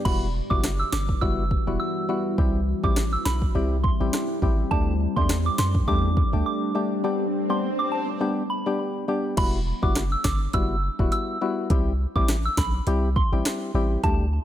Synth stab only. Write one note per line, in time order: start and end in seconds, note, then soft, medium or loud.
0.05 0.27 G3 medium
0.05 0.28 B3 medium
0.05 0.28 E4 medium
0.05 0.28 F#4 loud
0.50 0.71 G3 medium
0.50 0.71 B3 medium
0.50 0.71 E4 medium
0.50 0.71 F#4 medium
1.22 1.44 G3 medium
1.22 1.44 B3 medium
1.22 1.44 E4 medium
1.22 1.44 F#4 loud
1.67 2.06 G3 medium
1.67 2.06 B3 medium
1.67 2.06 E4 medium
1.67 2.06 F#4 medium
2.09 2.36 G3 medium
2.09 2.36 B3 medium
2.09 2.36 E4 medium
2.09 2.36 F#4 medium
2.38 2.60 G3 medium
2.38 2.60 C4 medium
2.38 2.61 E4 medium
2.38 2.61 G4 loud
2.83 3.04 G3 medium
2.83 3.04 C4 medium
2.83 3.04 E4 medium
2.83 3.04 G4 medium
3.55 3.77 G3 loud
3.55 3.77 C4 medium
3.55 3.77 E4 medium
3.55 3.77 G4 loud
4.00 4.39 G3 medium
4.00 4.39 C4 medium
4.00 4.39 E4 medium
4.00 4.39 G4 medium
4.42 4.69 G3 medium
4.42 4.69 C4 medium
4.42 4.70 E4 medium
4.42 4.70 G4 medium
4.71 4.94 G3 loud
4.71 4.94 A3 medium
4.71 4.94 D4 medium
4.71 4.94 G4 loud
5.17 5.37 G3 medium
5.17 5.37 A3 medium
5.17 5.37 D4 medium
5.17 5.38 G4 medium
5.88 6.10 G3 loud
5.88 6.10 A3 medium
5.88 6.10 D4 medium
5.88 6.10 G4 loud
6.33 6.72 G3 medium
6.33 6.72 A3 medium
6.33 6.72 D4 medium
6.33 6.72 G4 medium
6.75 7.02 G3 medium
6.75 7.02 A3 medium
6.75 7.02 D4 medium
6.75 7.02 G4 medium
7.04 7.26 G3 medium
7.04 7.26 B3 medium
7.04 7.26 D4 medium
7.04 7.27 G4 loud
7.49 7.70 G3 medium
7.49 7.70 B3 medium
7.49 7.70 D4 medium
7.49 7.70 G4 medium
8.21 8.43 G3 loud
8.21 8.43 B3 medium
8.21 8.43 D4 medium
8.21 8.43 G4 loud
8.66 9.05 G3 medium
8.66 9.05 B3 medium
8.66 9.05 D4 medium
8.66 9.05 G4 medium
9.08 9.35 G3 medium
9.08 9.35 B3 medium
9.08 9.35 D4 medium
9.08 9.36 G4 medium
9.37 9.59 G3 medium
9.37 9.59 B3 medium
9.37 9.59 E4 medium
9.37 9.60 F#4 loud
9.82 10.03 G3 medium
9.82 10.03 B3 medium
9.82 10.03 E4 medium
9.82 10.03 F#4 medium
10.54 10.76 G3 loud
10.54 10.76 B3 medium
10.54 10.76 E4 medium
10.54 10.76 F#4 loud
10.99 11.38 G3 medium
10.99 11.38 B3 medium
10.99 11.38 E4 medium
10.99 11.38 F#4 medium
11.41 11.68 G3 medium
11.41 11.68 B3 medium
11.41 11.69 E4 medium
11.41 11.69 F#4 medium
11.70 11.92 G3 medium
11.70 11.93 C4 medium
11.70 11.93 E4 medium
11.70 11.93 G4 loud
12.16 12.36 G3 medium
12.16 12.36 C4 medium
12.16 12.36 E4 medium
12.16 12.36 G4 medium
12.87 13.09 G3 loud
12.87 13.09 C4 medium
12.87 13.09 E4 medium
12.87 13.09 G4 loud
13.32 13.71 G3 medium
13.32 13.71 C4 medium
13.32 13.71 E4 medium
13.32 13.72 G4 medium
13.75 14.02 G3 medium
13.75 14.02 C4 medium
13.75 14.02 E4 medium
13.75 14.02 G4 medium
14.04 14.26 G3 medium
14.04 14.26 A3 medium
14.04 14.26 D4 medium
14.04 14.26 G4 loud